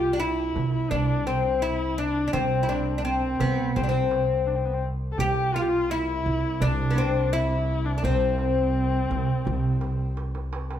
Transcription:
Already playing: C2 F4 G4
0.03 darbuka ka
0.13 D4
0.20 E4
0.38 darbuka ka
0.56 C2, darbuka dum
0.73 E4, darbuka ka
0.90 C2 D4, darbuka dum
1.26 C4
1.62 E4
1.98 D4
2.28 D4
2.33 C2 C4, darbuka dum
2.52 darbuka ka
2.63 E4
2.69 D4, darbuka tek
2.87 darbuka ka
2.98 D4
3.05 C4
3.23 darbuka ka
3.40 C2 B3, darbuka dum
3.58 darbuka ka
3.76 C2 C4, darbuka dum
3.83 D4
3.89 C4
4.11 darbuka tek
4.46 D4
4.56 C4
4.65 B3
4.73 C4
4.83 darbuka ka
5.12 A4
5.18 C2 G4, darbuka dum
5.36 darbuka ka
5.54 F4, darbuka tek
5.61 G4
5.69 F4, darbuka ka
5.90 E4
6.08 darbuka ka
6.26 C2
6.43 darbuka ka
6.60 C2 D4, darbuka dum
6.91 B3
6.96 C4, darbuka tek
7.33 E4
7.85 D4
7.98 D4
8.03 C2 C4, darbuka dum
8.38 darbuka tek
8.57 darbuka ka
8.92 darbuka ka
9.11 C2, darbuka dum
9.28 darbuka ka
9.45 C2, darbuka dum
9.81 darbuka tek
9.99 darbuka ka
10.17 darbuka tek
10.35 darbuka ka
10.53 darbuka tek
10.71 darbuka ka

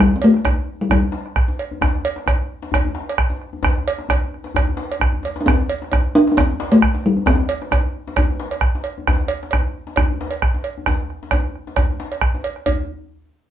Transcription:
0.00 G3, bombo rim, bombo low
0.14 C4, bombo rim
0.22 A3, cowbell
0.34 bombo rim, djembe slap
0.44 bombo rim, bombo low, cowbell, djembe tone
0.57 djembe slap
0.81 G3
0.90 G3, bombo rim, bombo low, cowbell, djembe bass
1.02 djembe slap, djembe tone
1.12 djembe slap
1.26 bombo rim
1.36 bombo rim, bombo low
1.48 djembe slap
1.59 bombo rim, cowbell
1.71 djembe slap, djembe tone
1.81 bombo rim, bombo low, djembe slap, djembe bass
1.95 bombo rim
2.05 cowbell
2.16 bombo rim, djembe slap
2.26 bombo rim, bombo low, cowbell, djembe tone
2.39 djembe slap
2.62 djembe slap
2.72 bombo rim, bombo low, cowbell, djembe bass
2.85 djembe slap, djembe tone
2.95 djembe slap
3.09 bombo rim, cowbell
3.18 bombo rim, bombo low
3.30 djembe slap
3.42 bombo rim
3.53 djembe slap, djembe tone
3.63 bombo rim, bombo low, djembe slap, djembe bass
3.86 cowbell, djembe slap
3.98 djembe slap
4.09 bombo rim, bombo low, cowbell, djembe slap, djembe tone
4.22 djembe slap
4.32 bombo rim, djembe slap
4.44 bombo rim, djembe slap
4.55 bombo rim, bombo low, cowbell, djembe bass
4.67 bombo rim, djembe tone
4.77 djembe slap
4.89 bombo rim, cowbell, djembe slap
5.00 bombo rim, bombo low, djembe bass
5.13 bombo rim, djembe bass
5.23 cowbell, djembe slap
5.36 djembe slap
5.41 D4
5.46 C4, bombo rim, bombo low, djembe slap, djembe bass
5.69 cowbell
5.82 bombo rim, djembe slap
5.92 bombo rim, bombo low, cowbell, djembe tone
6.04 djembe slap
6.15 D4
6.27 djembe slap
6.32 D4
6.37 C4, bombo rim, bombo low, cowbell, djembe bass
6.50 djembe slap, djembe tone
6.60 djembe slap
6.72 A3, bombo rim, cowbell
6.82 bombo rim, bombo low
6.94 djembe slap
7.04 G3, bombo rim
7.17 djembe slap, djembe tone
7.26 C4, bombo rim, bombo low, djembe slap, djembe bass
7.40 bombo rim
7.49 cowbell
7.62 bombo rim, djembe slap
7.71 bombo rim, bombo low, cowbell, djembe tone
7.85 djembe slap
8.08 djembe slap
8.16 bombo rim, bombo low, cowbell, djembe bass
8.31 djembe tone
8.40 djembe slap
8.51 bombo rim, cowbell
8.61 bombo rim, bombo low
8.75 djembe slap
8.84 bombo rim, cowbell
8.98 djembe slap, djembe tone
9.07 bombo rim, bombo low, djembe slap, djembe bass
9.20 bombo rim
9.28 cowbell
9.43 bombo rim, djembe slap
9.51 bombo rim, bombo low, cowbell, djembe tone
9.65 djembe slap
9.87 djembe slap
9.96 bombo rim, bombo low, cowbell, djembe bass
10.10 djembe slap, djembe tone
10.21 djembe slap
10.31 bombo rim, cowbell
10.42 bombo rim, bombo low
10.54 djembe slap
10.64 bombo rim, cowbell
10.78 djembe slap, djembe tone
10.86 bombo rim, bombo low, djembe slap, djembe bass
11.10 bombo rim
11.23 djembe slap
11.31 bombo rim, bombo low, cowbell, djembe slap, djembe tone
11.44 bombo rim, djembe slap
11.55 bombo rim
11.67 djembe slap
11.76 bombo rim, bombo low, cowbell, djembe slap, djembe bass
11.90 djembe tone
12.00 bombo rim, djembe slap
12.12 bombo rim, cowbell
12.21 bombo rim, bombo low
12.34 bombo rim, djembe slap
12.44 cowbell
12.56 bombo rim
12.66 bombo low, cowbell, djembe bass

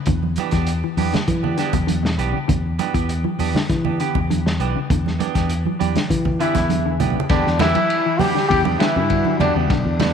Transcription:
0.06 E2 D3, kick, closed hi-hat, low conga
0.23 high conga
0.36 E3 B3 D4 G4, closed hi-hat, high conga
0.51 E2 E3 B3 D4 G4, kick, snare, closed hi-hat
0.67 closed hi-hat
0.84 E3
0.97 E2 E3 B3 D4 G4, open hi-hat, high conga
1.13 D3, snare, closed hi-hat, low conga
1.28 E3, muted clean electric guitar stroke, kick, closed hi-hat, high conga
1.43 B3 D4 G4, low conga
1.57 D3 E3 B3 D4 G4, snare, closed hi-hat
1.73 E2 C#3, kick, closed hi-hat, high conga
1.87 D3, closed hi-hat, high conga
2.03 B2, snare
2.18 B1 E3 B3 D4 G4, closed hi-hat
2.33 C#3
2.48 E2 D3, kick, closed hi-hat, low conga
2.79 E3 B3 D4 G4, closed hi-hat, high conga
2.94 E2 E3 B3 G4, muted clean electric guitar stroke, kick, closed hi-hat
3.09 closed hi-hat
3.24 E3, high conga
3.39 E2 E3 B3 D4 G4, open hi-hat, high conga
3.55 D3, snare, low conga
3.69 C#3 E3, kick, snare, closed hi-hat
3.85 B3 D4 G4, low conga
4.00 D3 E3 B3 G4, muted clean electric guitar stroke, closed hi-hat
4.15 E2 C#3, kick, high conga
4.30 D3, closed hi-hat, high conga
4.46 D3, snare
4.60 B1 E3 B3 D4 G4, closed hi-hat
4.76 C#3
4.90 E2 D3, kick, closed hi-hat, low conga
5.06 snare, high conga
5.19 E3 B3 D4 G4, closed hi-hat, high conga
5.34 E2 E3 B3 D4 G4, kick, snare, closed hi-hat
5.49 closed hi-hat
5.66 E3, high conga
5.79 E2 E3 D4 G4, muted clean electric guitar stroke, closed hi-hat, high conga
5.95 D3, snare, closed hi-hat, high conga
6.09 C#3 E3, kick, closed hi-hat, high conga
6.25 kick, low conga
6.39 D3 E3 B3 D4 E4 G4, closed hi-hat
6.55 E2 C#3, kick, snare, closed hi-hat, high conga
6.69 D3, closed hi-hat, high conga
6.86 D3
7.00 B1 E3 B3 D4 G4, closed hi-hat, low conga
7.10 low conga
7.15 C#3
7.20 low conga
7.29 E2 D3 E3 B3 D4 G4, kick, snare, ride bell
7.47 E2, snare
7.59 E3 B3 D4 E4 G4, snare, ride bell, high conga, low conga
7.75 E3, ride bell, high conga
7.90 ride bell
8.06 E3
8.19 E3 G3 B3 D4 F#4 G4, open hi-hat, high conga, low conga
8.35 D3, snare
8.48 E2 C#3 D3 G3 G4, kick, ride bell
8.65 B3 D4 G4, high conga
8.79 D3 E3 B3 D4 E4 G4, muted fingered electric bass stroke, snare, ride bell
8.96 G2 C#3
9.09 D3 G3 D4 F#4, kick, ride bell
9.25 D3, high conga
9.39 E2 D3 E3 D4 G4, ride bell, high conga, low conga
9.55 E2 C#3 B3 D4 G4
9.70 B1 D3 D4, kick, snare, ride bell
9.85 E2
10.00 E3 B3 D4, muted clean electric guitar stroke, snare, ride bell, high conga, low conga

